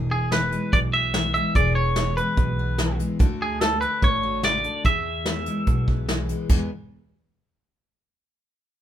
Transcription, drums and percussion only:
0, 0, Header, 1, 2, 480
1, 0, Start_track
1, 0, Tempo, 412371
1, 1809, Time_signature, 4, 2, 24, 8
1, 10255, End_track
2, 0, Start_track
2, 0, Title_t, "Drums"
2, 369, Note_on_c, 9, 38, 106
2, 369, Note_on_c, 9, 42, 62
2, 486, Note_off_c, 9, 38, 0
2, 486, Note_off_c, 9, 42, 0
2, 607, Note_on_c, 9, 42, 56
2, 723, Note_off_c, 9, 42, 0
2, 846, Note_on_c, 9, 42, 55
2, 849, Note_on_c, 9, 36, 111
2, 962, Note_off_c, 9, 42, 0
2, 965, Note_off_c, 9, 36, 0
2, 1324, Note_on_c, 9, 38, 114
2, 1324, Note_on_c, 9, 42, 60
2, 1441, Note_off_c, 9, 38, 0
2, 1441, Note_off_c, 9, 42, 0
2, 1566, Note_on_c, 9, 42, 58
2, 1683, Note_off_c, 9, 42, 0
2, 1807, Note_on_c, 9, 36, 111
2, 1807, Note_on_c, 9, 42, 64
2, 1923, Note_off_c, 9, 36, 0
2, 1924, Note_off_c, 9, 42, 0
2, 2279, Note_on_c, 9, 38, 104
2, 2279, Note_on_c, 9, 42, 63
2, 2396, Note_off_c, 9, 38, 0
2, 2396, Note_off_c, 9, 42, 0
2, 2529, Note_on_c, 9, 42, 60
2, 2646, Note_off_c, 9, 42, 0
2, 2759, Note_on_c, 9, 42, 61
2, 2764, Note_on_c, 9, 36, 113
2, 2876, Note_off_c, 9, 42, 0
2, 2880, Note_off_c, 9, 36, 0
2, 3240, Note_on_c, 9, 38, 119
2, 3240, Note_on_c, 9, 42, 68
2, 3356, Note_off_c, 9, 38, 0
2, 3356, Note_off_c, 9, 42, 0
2, 3489, Note_on_c, 9, 42, 69
2, 3605, Note_off_c, 9, 42, 0
2, 3723, Note_on_c, 9, 42, 69
2, 3725, Note_on_c, 9, 36, 118
2, 3839, Note_off_c, 9, 42, 0
2, 3841, Note_off_c, 9, 36, 0
2, 4204, Note_on_c, 9, 38, 107
2, 4204, Note_on_c, 9, 42, 63
2, 4320, Note_off_c, 9, 38, 0
2, 4320, Note_off_c, 9, 42, 0
2, 4443, Note_on_c, 9, 42, 57
2, 4559, Note_off_c, 9, 42, 0
2, 4685, Note_on_c, 9, 36, 109
2, 4685, Note_on_c, 9, 42, 57
2, 4801, Note_off_c, 9, 36, 0
2, 4801, Note_off_c, 9, 42, 0
2, 5161, Note_on_c, 9, 38, 113
2, 5161, Note_on_c, 9, 42, 65
2, 5277, Note_off_c, 9, 38, 0
2, 5277, Note_off_c, 9, 42, 0
2, 5403, Note_on_c, 9, 42, 58
2, 5520, Note_off_c, 9, 42, 0
2, 5639, Note_on_c, 9, 42, 59
2, 5643, Note_on_c, 9, 36, 108
2, 5755, Note_off_c, 9, 42, 0
2, 5759, Note_off_c, 9, 36, 0
2, 6117, Note_on_c, 9, 38, 97
2, 6117, Note_on_c, 9, 42, 60
2, 6234, Note_off_c, 9, 38, 0
2, 6234, Note_off_c, 9, 42, 0
2, 6355, Note_on_c, 9, 42, 59
2, 6471, Note_off_c, 9, 42, 0
2, 6595, Note_on_c, 9, 42, 60
2, 6602, Note_on_c, 9, 36, 102
2, 6711, Note_off_c, 9, 42, 0
2, 6718, Note_off_c, 9, 36, 0
2, 6842, Note_on_c, 9, 36, 81
2, 6959, Note_off_c, 9, 36, 0
2, 7082, Note_on_c, 9, 38, 104
2, 7082, Note_on_c, 9, 42, 68
2, 7199, Note_off_c, 9, 38, 0
2, 7199, Note_off_c, 9, 42, 0
2, 7319, Note_on_c, 9, 42, 63
2, 7435, Note_off_c, 9, 42, 0
2, 7558, Note_on_c, 9, 49, 82
2, 7562, Note_on_c, 9, 36, 104
2, 7674, Note_off_c, 9, 49, 0
2, 7678, Note_off_c, 9, 36, 0
2, 10255, End_track
0, 0, End_of_file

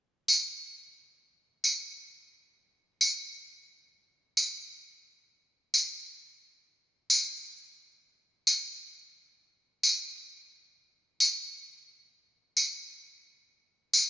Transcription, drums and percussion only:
0, 0, Header, 1, 2, 480
1, 0, Start_track
1, 0, Tempo, 682749
1, 1635, Time_signature, 4, 2, 24, 8
1, 9911, End_track
2, 0, Start_track
2, 0, Title_t, "Drums"
2, 199, Note_on_c, 9, 54, 57
2, 269, Note_off_c, 9, 54, 0
2, 1153, Note_on_c, 9, 54, 63
2, 1223, Note_off_c, 9, 54, 0
2, 2116, Note_on_c, 9, 54, 59
2, 2186, Note_off_c, 9, 54, 0
2, 3073, Note_on_c, 9, 54, 63
2, 3143, Note_off_c, 9, 54, 0
2, 4035, Note_on_c, 9, 54, 65
2, 4105, Note_off_c, 9, 54, 0
2, 4991, Note_on_c, 9, 54, 67
2, 5061, Note_off_c, 9, 54, 0
2, 5955, Note_on_c, 9, 54, 68
2, 6025, Note_off_c, 9, 54, 0
2, 6914, Note_on_c, 9, 54, 67
2, 6984, Note_off_c, 9, 54, 0
2, 7876, Note_on_c, 9, 54, 64
2, 7946, Note_off_c, 9, 54, 0
2, 8835, Note_on_c, 9, 54, 68
2, 8906, Note_off_c, 9, 54, 0
2, 9797, Note_on_c, 9, 54, 65
2, 9867, Note_off_c, 9, 54, 0
2, 9911, End_track
0, 0, End_of_file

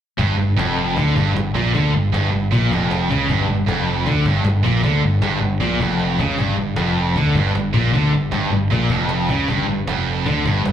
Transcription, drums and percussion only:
0, 0, Header, 1, 2, 480
1, 0, Start_track
1, 0, Key_signature, -2, "minor"
1, 0, Tempo, 387097
1, 236, Time_signature, 4, 2, 24, 8
1, 13297, End_track
2, 0, Start_track
2, 0, Title_t, "Cajon"
2, 239, Note_on_c, 9, 36, 98
2, 363, Note_off_c, 9, 36, 0
2, 485, Note_on_c, 9, 38, 34
2, 608, Note_off_c, 9, 38, 0
2, 608, Note_on_c, 9, 38, 31
2, 732, Note_off_c, 9, 38, 0
2, 734, Note_on_c, 9, 38, 99
2, 858, Note_off_c, 9, 38, 0
2, 1202, Note_on_c, 9, 36, 99
2, 1326, Note_off_c, 9, 36, 0
2, 1444, Note_on_c, 9, 36, 94
2, 1568, Note_off_c, 9, 36, 0
2, 1692, Note_on_c, 9, 38, 98
2, 1816, Note_off_c, 9, 38, 0
2, 1924, Note_on_c, 9, 36, 88
2, 2048, Note_off_c, 9, 36, 0
2, 2163, Note_on_c, 9, 36, 99
2, 2287, Note_off_c, 9, 36, 0
2, 2656, Note_on_c, 9, 38, 108
2, 2780, Note_off_c, 9, 38, 0
2, 3127, Note_on_c, 9, 36, 103
2, 3251, Note_off_c, 9, 36, 0
2, 3366, Note_on_c, 9, 36, 109
2, 3490, Note_off_c, 9, 36, 0
2, 3609, Note_on_c, 9, 38, 93
2, 3733, Note_off_c, 9, 38, 0
2, 3845, Note_on_c, 9, 36, 101
2, 3969, Note_off_c, 9, 36, 0
2, 4084, Note_on_c, 9, 36, 95
2, 4208, Note_off_c, 9, 36, 0
2, 4448, Note_on_c, 9, 38, 29
2, 4568, Note_off_c, 9, 38, 0
2, 4568, Note_on_c, 9, 38, 104
2, 4692, Note_off_c, 9, 38, 0
2, 5040, Note_on_c, 9, 36, 90
2, 5164, Note_off_c, 9, 36, 0
2, 5279, Note_on_c, 9, 36, 101
2, 5403, Note_off_c, 9, 36, 0
2, 5513, Note_on_c, 9, 38, 98
2, 5637, Note_off_c, 9, 38, 0
2, 5759, Note_on_c, 9, 36, 97
2, 5883, Note_off_c, 9, 36, 0
2, 5999, Note_on_c, 9, 36, 94
2, 6123, Note_off_c, 9, 36, 0
2, 6472, Note_on_c, 9, 38, 100
2, 6596, Note_off_c, 9, 38, 0
2, 6956, Note_on_c, 9, 36, 105
2, 7080, Note_off_c, 9, 36, 0
2, 7194, Note_on_c, 9, 36, 105
2, 7318, Note_off_c, 9, 36, 0
2, 7439, Note_on_c, 9, 38, 58
2, 7563, Note_off_c, 9, 38, 0
2, 7671, Note_on_c, 9, 36, 88
2, 7795, Note_off_c, 9, 36, 0
2, 7913, Note_on_c, 9, 36, 97
2, 8037, Note_off_c, 9, 36, 0
2, 8387, Note_on_c, 9, 38, 113
2, 8511, Note_off_c, 9, 38, 0
2, 8876, Note_on_c, 9, 36, 96
2, 9000, Note_off_c, 9, 36, 0
2, 9119, Note_on_c, 9, 36, 108
2, 9243, Note_off_c, 9, 36, 0
2, 9363, Note_on_c, 9, 38, 99
2, 9487, Note_off_c, 9, 38, 0
2, 9597, Note_on_c, 9, 36, 99
2, 9721, Note_off_c, 9, 36, 0
2, 9839, Note_on_c, 9, 36, 89
2, 9963, Note_off_c, 9, 36, 0
2, 10315, Note_on_c, 9, 38, 102
2, 10439, Note_off_c, 9, 38, 0
2, 10796, Note_on_c, 9, 36, 89
2, 10920, Note_off_c, 9, 36, 0
2, 11037, Note_on_c, 9, 36, 109
2, 11161, Note_off_c, 9, 36, 0
2, 11272, Note_on_c, 9, 38, 97
2, 11396, Note_off_c, 9, 38, 0
2, 11518, Note_on_c, 9, 36, 91
2, 11642, Note_off_c, 9, 36, 0
2, 11759, Note_on_c, 9, 36, 100
2, 11883, Note_off_c, 9, 36, 0
2, 12244, Note_on_c, 9, 38, 111
2, 12368, Note_off_c, 9, 38, 0
2, 12724, Note_on_c, 9, 36, 94
2, 12848, Note_off_c, 9, 36, 0
2, 12965, Note_on_c, 9, 36, 107
2, 13089, Note_off_c, 9, 36, 0
2, 13212, Note_on_c, 9, 38, 104
2, 13297, Note_off_c, 9, 38, 0
2, 13297, End_track
0, 0, End_of_file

